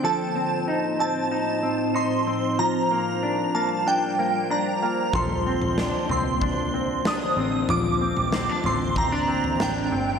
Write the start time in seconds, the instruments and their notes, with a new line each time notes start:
Already playing: clean electric guitar C4, ambient pad C5
0.02 ambient pad A2 F3 C4 D#4, clean electric guitar F3 A4, synth bell A5
0.35 clean electric guitar C4
0.68 clean electric guitar D#4
1.00 clean electric guitar C4, synth bell A5
1.31 clean electric guitar D#4
1.63 clean electric guitar C4
1.95 clean electric guitar D#4, synth bell C6
2.27 clean electric guitar C4
2.58 clean electric guitar F3, ambient pad G3 A#3 F4, synth bell A#5
2.91 clean electric guitar A#3
3.23 clean electric guitar D4
3.55 clean electric guitar A#3, synth bell A5
3.87 clean electric guitar D4, synth bell G5
4.19 clean electric guitar A#3
4.50 clean electric guitar D4, synth bell A#5
4.82 clean electric guitar A#3
5.11 picked electric bass A#1, ambient pad D3 C4, clean electric guitar F3 A4, synth bell C6, kick, floor tom
5.47 clean electric guitar C4
5.62 picked electric bass A#1, floor tom
5.78 clean electric guitar D4, snare
6.09 picked electric bass C2, clean electric guitar C4, synth bell C6, floor tom
6.42 clean electric guitar D4, kick, floor tom
6.74 clean electric guitar C4
7.05 clean electric guitar D4, synth bell D#6, snare
7.37 picked electric bass A1, clean electric guitar C4
7.69 picked electric bass A#1, clean electric guitar F3, synth bell D6, floor tom
8.01 clean electric guitar C4
8.17 picked electric bass A#1, floor tom
8.32 clean electric guitar C4, snare
8.49 clean electric guitar D4
8.64 picked electric bass A1, clean electric guitar C4, synth bell C6, floor tom
8.96 clean electric guitar C4, synth bell A#5, kick, floor tom
9.12 clean electric guitar D4
9.28 clean electric guitar C4
9.44 floor tom
9.60 picked electric bass A1, clean electric guitar D4, synth bell G5, snare
9.92 picked electric bass G1, clean electric guitar C4